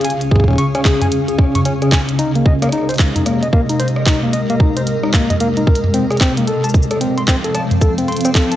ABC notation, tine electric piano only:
X:1
M:4/4
L:1/16
Q:"Swing 16ths" 1/4=112
K:Abmix
V:1 name="Tine electric piano"
a z A D d' D A a z A D d' D A a z | E B, e B, E c z E B, e B, E c z E B, | e B, E c z E B, e B, E B z C A C B, | =A =a z A C c' C A a z A C c' C A a |]